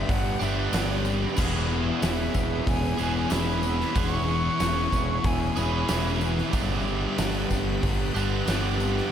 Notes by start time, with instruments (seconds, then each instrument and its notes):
Already playing: overdriven electric guitar G3 B3 D4 G4, ambient pad D4 G4 B4 D5, flute E5
0.07 picked electric bass G1, distorted electric guitar G2 D3 G3, flute F#5, kick, open hi-hat, tambourine
0.39 picked electric bass G1, distorted electric guitar D3 G3, overdriven electric guitar B3 D4 G4, flute E5, tambourine
0.43 overdriven electric guitar G3
0.72 picked electric bass G1, distorted electric guitar G2 D3 G3, overdriven electric guitar G3 B3 D4, flute D5, snare, open hi-hat, tambourine
0.76 overdriven electric guitar G4
1.04 distorted electric guitar D3 G3, tambourine
1.36 picked electric bass E1, distorted electric guitar E2 B2 E3, overdriven electric guitar E3 B3 E4 G#4, ambient pad C#4 G#4 E5, kick, tambourine, crash
1.69 distorted electric guitar B2 E3, tambourine
2.01 picked electric bass E1, distorted electric guitar E2 B2 E3, flute E5, snare, open hi-hat, tambourine
2.33 picked electric bass E1, distorted electric guitar B2 E3, kick, tambourine
2.64 picked electric bass E1, distorted electric guitar E2 B2 E3, flute G#5, kick, open hi-hat, tambourine
2.97 picked electric bass E1, distorted electric guitar E3, overdriven electric guitar B3 E4 G#4, flute G#5, tambourine
3.01 distorted electric guitar B2, overdriven electric guitar E3
3.17 flute G#5
3.29 picked electric bass E1, distorted electric guitar E2 B2, overdriven electric guitar E3 B3 E4, flute B5, snare, open hi-hat, tambourine
3.34 distorted electric guitar E3, overdriven electric guitar G#4
3.63 distorted electric guitar B2 E3, tambourine
3.80 snare
3.94 picked electric bass E1, distorted electric guitar E2 B2, overdriven electric guitar E3 B3 E4 G#4, flute C#6, kick, open hi-hat, tambourine
3.98 distorted electric guitar E3
4.28 distorted electric guitar B2 E3, tambourine
4.59 picked electric bass E1, distorted electric guitar E2 B2 E3, snare, open hi-hat, tambourine
4.92 picked electric bass E1, distorted electric guitar B2 E3, kick, tambourine
5.23 picked electric bass E1, distorted electric guitar E2 B2 E3, flute G#5, kick, open hi-hat, tambourine
5.55 picked electric bass E1, distorted electric guitar B2 E3, overdriven electric guitar B3 E4 G#4, flute B5, tambourine
5.60 overdriven electric guitar E3
5.87 picked electric bass E1, distorted electric guitar E2 B2 E3, overdriven electric guitar E3 B3, snare, open hi-hat, tambourine
5.91 overdriven electric guitar E4 G#4
6.20 distorted electric guitar B2 E3, tambourine
6.38 snare
6.52 picked electric bass G1, distorted electric guitar G2 D3 G3, overdriven electric guitar G3 B3 D4, ambient pad D4 G4 B4, kick, open hi-hat, tambourine
6.56 overdriven electric guitar G4, ambient pad F#5
6.85 distorted electric guitar D3 G3, tambourine
7.17 picked electric bass G1, distorted electric guitar G2 D3 G3, snare, open hi-hat, tambourine
7.50 picked electric bass G1, distorted electric guitar D3 G3, kick, tambourine
7.82 picked electric bass G1, distorted electric guitar G2 D3 G3, kick, open hi-hat, tambourine
8.13 picked electric bass G1, distorted electric guitar D3 G3, overdriven electric guitar B3 D4 G4, tambourine
8.18 overdriven electric guitar G3
8.46 picked electric bass G1, distorted electric guitar G2 D3 G3, overdriven electric guitar G3 B3, snare, open hi-hat, tambourine
8.50 overdriven electric guitar D4 G4
8.77 distorted electric guitar D3 G3, tambourine
8.97 snare